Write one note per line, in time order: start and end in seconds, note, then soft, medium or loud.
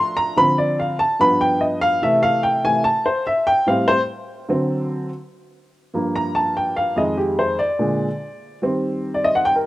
0.00 0.32 F3 medium
0.00 0.32 A3 soft
0.00 0.32 D4 medium
0.00 0.15 C6 loud
0.17 0.36 A#5 loud
0.36 0.95 D3 medium
0.36 0.95 F3 medium
0.36 0.96 C4 medium
0.36 0.57 B5 loud
0.58 0.77 D5 medium
0.80 0.98 F5 medium
0.99 1.19 A5 medium
1.20 1.98 G2 medium
1.20 1.98 F3 medium
1.20 1.98 B3 medium
1.20 1.40 B5 loud
1.41 1.60 G5 medium
1.61 1.80 D#5 medium
1.81 2.01 F5 loud
2.02 2.60 C3 medium
2.02 2.61 E3 medium
2.02 2.61 A3 medium
2.02 2.22 E5 medium
2.23 2.42 F5 loud
2.43 2.63 G5 medium
2.64 2.82 C3 soft
2.64 2.82 E3 soft
2.64 2.83 A3 medium
2.64 2.84 G#5 loud
2.84 3.04 A5 loud
3.06 3.25 C5 medium
3.27 3.46 E5 medium
3.47 3.66 G5 loud
3.66 3.94 A2 medium
3.66 3.94 G3 medium
3.66 3.95 C4 medium
3.66 3.87 F5 medium
3.88 4.00 C5 loud
4.49 5.08 D3 medium
4.49 5.08 F#3 medium
4.49 5.09 C4 medium
5.94 6.93 G2 medium
5.94 6.93 F3 soft
5.94 6.94 A#3 medium
6.16 6.35 A#5 medium
6.35 6.55 A5 medium
6.57 6.76 G5 medium
6.77 6.97 F5 medium
6.96 7.56 F2 medium
6.96 7.56 D#3 soft
6.96 7.56 G#3 medium
6.96 7.17 D#5 medium
7.17 7.38 G4 medium
7.39 7.59 C5 medium
7.59 8.58 D5 medium
7.79 8.07 A#2 medium
7.79 8.07 D3 medium
7.79 8.07 G#3 medium
8.62 9.64 D#3 medium
8.62 9.64 G3 soft
8.62 9.64 C4 medium
9.14 9.24 D5 medium
9.24 9.34 D#5 medium
9.35 9.45 F#5 medium
9.45 9.55 G5 loud
9.56 9.65 A#4 medium